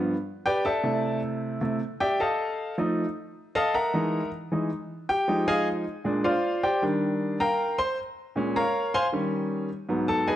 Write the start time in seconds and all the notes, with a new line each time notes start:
Already playing: G2 F3 B3
0.46 G4 B4 D5 G5
0.65 A4 D5 E5 A5
0.83 C3 A3 E4
1.61 C3 A3 E4
2.00 G4 D5 E5 G5
2.20 A4 D#5 F5 A5
2.78 F3 A3 D#4
3.55 A4 D#5 F5 A5
3.74 A#4 E5 F#5 A#5
3.94 E3 G#3 D#4
4.52 E3 G#3 D#4
5.09 G4 G5
5.28 F3 G#3 D#4
5.48 G#4 D#5 F5 G#5
6.04 A#2 G#3 D4
6.24 F4 C5 D5 F5
6.63 G4 C5 D5 G5
6.82 D#3 G3 D4
7.40 A#4 F5 G5 A#5
7.78 C5 C6
8.36 A#2 G#3 C#4
8.56 A#4 C#5 F5 A#5
8.94 C5 F5 G#5 C6
9.12 D#3 G3 C#4
9.89 G#2 F#3 B3
10.08 A4 A5
10.28 G#4 B4 D#5 G#5